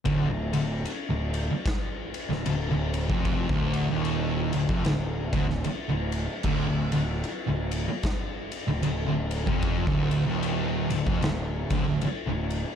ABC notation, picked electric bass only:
X:1
M:4/4
L:1/16
Q:"Swing" 1/4=75
K:Dphr
V:1 name="Picked electric bass" clef=bass
D,,, D,,, D,,,2 z D,,,2 z4 D,,, D,,, D,,,2 F,,,- | F,,, D,,,2 E,,,3 D,,, F,,, D,,,2 D,,, D,,, z D,,,2 z | D,,, D,,, D,,,2 z D,,,2 z4 D,,, D,,, D,,,2 F,,,- | F,,, D,,,2 E,,,3 D,,, F,,, D,,,2 D,,, D,,, z D,,,2 z |]